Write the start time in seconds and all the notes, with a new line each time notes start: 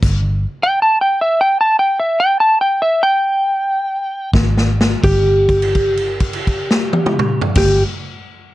0.03 G1, kick, snare, closed hi-hat, crash
0.63 G5
0.82 A5
1.01 G5
1.21 E5
1.41 G5
1.61 A5
1.79 G5
2.00 E5
2.20 G5
2.40 A5
2.61 G5
2.82 E5
3.03 G5
4.33 G#1, kick, snare
4.57 snare
4.81 snare
5.04 G1 G4, kick, crash
5.49 kick, crash
5.62 crash
5.75 kick, crash
5.97 crash
6.20 kick, crash
6.33 crash
6.47 kick, crash
6.71 snare
6.93 high tom
7.06 mid tom
7.19 mid tom
7.41 floor tom
7.55 G1 G4, kick, snare, crash